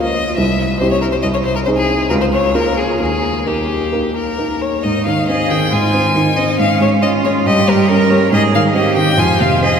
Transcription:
0.00 0.40 C#2 soft
0.00 0.33 A#3 soft
0.00 0.34 F4 soft
0.00 0.34 A#4 soft
0.00 0.36 D#5 medium
0.37 0.79 C2 soft
0.37 0.79 E5 medium
0.80 1.20 C4 soft
0.80 1.20 E4 soft
0.80 1.20 G4 soft
0.80 0.91 C5 medium
0.92 1.01 C#5 medium
1.02 1.06 A#4 medium
1.12 1.17 C5 medium
1.22 1.65 C2 soft
1.22 1.27 D#5 medium
1.34 1.38 C#5 medium
1.44 1.55 C5 medium
1.56 1.60 A#4 medium
1.66 2.06 C4 soft
1.66 2.06 D#4 soft
1.66 2.07 G#4 soft
1.66 1.70 C5 medium
1.77 2.09 G#4 medium
2.10 2.53 C#2 medium
2.10 2.14 A#4 medium
2.21 2.26 C5 medium
2.33 2.56 C#5 medium
2.55 2.96 A#3 soft
2.55 2.96 F4 soft
2.55 2.79 A#4 medium
2.55 2.96 A#4 soft
2.78 3.00 G#4 medium
3.00 3.45 D#2 soft
3.00 3.49 G#4 medium
3.46 3.88 A#3 soft
3.46 3.89 D#4 soft
3.46 4.15 G4 soft
3.46 3.89 A#4 soft
3.92 4.35 A#3 soft
3.92 4.35 D#4 soft
3.92 4.35 A#4 soft
4.16 4.63 A#4 soft
4.38 4.80 A#3 soft
4.38 4.81 D#4 soft
4.38 4.81 A#4 soft
4.62 4.85 C#5 soft
4.83 5.70 G#2 soft
4.83 5.25 D#4 soft
4.83 5.05 D#5 soft
5.06 5.42 D#3 soft
5.06 5.28 F5 medium
5.28 5.64 C4 soft
5.28 5.71 G#4 soft
5.28 5.51 D#5 medium
5.50 5.86 D#3 soft
5.50 5.74 G5 medium
5.72 6.56 G#2 soft
5.72 6.17 F4 soft
5.72 6.38 G#5 medium
5.94 6.29 C4 soft
6.15 6.50 D#3 soft
6.15 6.60 D#4 soft
6.37 6.59 C4 soft
6.37 6.58 D#5 medium
6.59 7.44 G#2 soft
6.59 7.02 C#4 soft
6.59 6.80 F5 medium
6.80 7.16 G#3 soft
6.80 6.90 C#5 medium
7.02 7.37 C#4 soft
7.02 7.48 F4 medium
7.02 7.11 D#5 medium
7.24 7.46 G#3 soft
7.24 7.33 C#5 medium
7.46 8.30 G2 medium
7.46 7.92 G4 soft
7.46 7.71 D#5 medium
7.68 8.02 G3 soft
7.68 8.12 A#4 medium
7.89 8.24 C#4 soft
7.89 8.32 A#4 medium
8.10 8.32 G3 soft
8.10 8.32 C#5 medium
8.32 9.16 G#2 soft
8.32 8.75 G#4 medium
8.32 8.42 D#5 medium
8.54 8.88 D#3 soft
8.54 8.63 F5 medium
8.74 9.10 C4 soft
8.74 9.20 G4 medium
8.74 8.96 D#5 medium
8.97 9.19 D#3 soft
8.97 9.21 G5 medium
9.18 9.80 F2 medium
9.18 9.62 F4 soft
9.18 9.42 G#5 medium
9.40 9.76 C3 soft
9.40 9.63 F5 medium
9.62 9.80 C4 soft
9.62 9.80 G#4 soft
9.62 9.80 D#5 medium

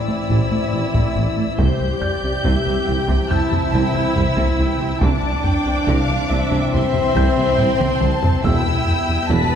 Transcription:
0.00 1.54 E3 medium
0.00 1.55 C4 medium
0.00 1.59 E4 medium
0.00 1.59 D5 medium
0.00 1.56 E6 medium
0.08 0.17 A2 soft
0.08 0.21 A3 medium
0.29 0.39 A1 medium
0.29 0.42 A2 medium
0.29 0.38 A2 medium
0.29 taiko medium
0.52 0.60 A2 soft
0.52 0.65 A3 medium
0.73 0.82 A1 medium
0.73 0.82 A1 soft
0.73 0.86 A2 medium
0.73 0.82 A2 soft
0.94 1.07 A2 medium
0.94 1.03 A2 medium
0.94 taiko medium
1.16 1.25 A1 soft
1.16 1.24 A1 medium
1.16 1.24 A2 soft
1.16 1.29 A2 medium
1.37 1.46 A2 medium
1.37 1.50 A3 medium
1.58 1.67 C2 medium
1.58 1.72 C2 medium
1.58 1.68 C2 medium
1.58 1.66 C3 medium
1.58 4.84 E3 medium
1.58 4.84 C4 medium
1.58 3.30 G4 medium
1.58 2.00 C5 medium
1.58 3.27 G6 loud
1.58 taiko loud
1.80 1.93 C2 medium
2.01 2.14 C2 medium
2.01 2.44 D5 medium
2.01 3.29 G6 soft
2.01 taiko low medium
2.23 2.36 C2 soft
2.23 2.31 C3 soft
2.44 2.53 C2 medium
2.44 2.58 C2 loud
2.44 2.52 C3 medium
2.44 2.87 E5 medium
2.44 taiko medium
2.66 2.79 C2 medium
2.66 2.74 C3 medium
2.88 3.01 C2 medium
2.88 2.96 C2 medium
2.88 2.97 C2 medium
2.88 2.96 C3 soft
2.88 3.30 G5 medium
3.08 3.22 C2 medium
3.08 3.17 C3 medium
3.08 taiko medium
3.30 3.43 C2 medium
3.30 3.39 C2 medium
3.30 3.39 C2 soft
3.30 3.38 C3 medium
3.30 4.98 E4 loud
3.30 3.73 A5 medium
3.30 5.02 E6 medium
3.30 5.84 G6 medium
3.30 taiko low soft
3.51 3.60 C3 medium
3.51 3.65 C3 medium
3.51 taiko low soft
3.73 3.86 C2 medium
3.73 3.81 C2 medium
3.73 3.82 C2 medium
3.73 3.81 C3 medium
3.73 4.16 G5 medium
3.73 taiko medium
3.94 4.02 C3 soft
3.94 4.08 C3 medium
4.16 4.24 C2 medium
4.16 4.25 C2 medium
4.16 4.30 C2 medium
4.16 4.24 C3 medium
4.16 4.59 E5 medium
4.16 taiko low medium
4.37 4.51 C2 medium
4.37 4.45 C3 medium
4.37 taiko medium
4.58 4.67 C2 medium
4.58 4.72 C2 medium
4.58 4.67 C3 soft
4.58 5.01 G5 medium
4.80 4.88 C3 medium
4.80 4.93 C3 medium
5.01 5.14 C2 medium
5.01 5.10 C2 medium
5.01 5.09 C3 medium
5.01 8.40 E3 medium
5.01 8.40 C4 medium
5.01 6.70 D4 medium
5.01 5.44 A5 medium
5.01 6.69 D6 loud
5.01 taiko loud
5.23 5.36 C2 medium
5.44 5.57 C2 medium
5.44 5.87 G5 medium
5.44 taiko low medium
5.65 5.78 C2 medium
5.65 5.74 C3 medium
5.87 6.00 C2 medium
5.87 5.95 C2 medium
5.87 5.96 C3 medium
5.87 6.30 F5 medium
5.87 taiko medium
6.08 6.21 C2 medium
6.08 6.17 C3 medium
6.29 6.38 C2 medium
6.29 6.43 C2 medium
6.29 6.39 C2 medium
6.29 6.38 C3 medium
6.29 6.71 E5 medium
6.51 6.64 C2 loud
6.51 6.59 C3 medium
6.51 taiko medium
6.72 6.85 C2 medium
6.72 6.82 C2 medium
6.72 6.81 C3 medium
6.72 8.44 C4 loud
6.72 7.57 E5 medium
6.72 8.45 C6 loud
6.72 taiko low medium
6.93 7.06 C3 medium
6.93 7.02 C3 medium
6.93 taiko low medium
7.15 7.24 C2 medium
7.15 7.28 C2 medium
7.15 7.25 C2 loud
7.15 7.24 C3 medium
7.15 9.55 G6 medium
7.15 taiko medium
7.37 7.45 C3 medium
7.37 7.50 C3 medium
7.58 7.67 C2 medium
7.58 7.72 C2 medium
7.58 7.68 C2 medium
7.58 7.66 C3 medium
7.58 8.01 G5 medium
7.58 taiko low-mid medium
7.80 7.93 C2 medium
7.80 7.88 C3 loud
7.80 taiko mid medium
8.00 8.10 C2 medium
8.00 8.14 C2 medium
8.00 8.10 C2 medium
8.00 8.09 C3 medium
8.00 8.43 A5 medium
8.00 taiko mid loud
8.23 8.31 C3 medium
8.23 8.36 C3 medium
8.23 taiko low loud
8.44 8.53 E1 medium
8.44 8.54 E1 medium
8.44 8.57 E2 medium
8.44 8.53 E2 medium
8.44 9.55 G3 medium
8.44 9.55 B3 loud
8.44 9.30 E4 medium
8.44 9.28 G5 medium
8.44 9.28 E6 loud
8.44 9.55 E6 medium
8.44 taiko loud
8.66 8.79 E2 medium
8.87 9.00 E2 medium
8.87 taiko low medium
9.09 9.17 E2 medium
9.09 9.22 E2 medium
9.29 9.38 E1 medium
9.29 9.39 E1 loud
9.29 9.43 E2 loud
9.29 9.38 E2 loud
9.29 9.55 B4 loud
9.29 9.55 A5 loud
9.29 9.55 B6 loud
9.29 taiko medium
9.52 9.55 E2 medium

